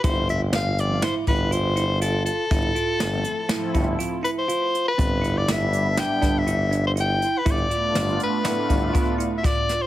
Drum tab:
HH |xxxxxxxxxx|xxxxxxxxxx|xxxxxxxxxx|xxxxxxxxxx|
SD |--o-o-----|--o-o-----|--o-oo----|--o-o---oo|
BD |o----o----|o----o----|o----o----|o----oo-o-|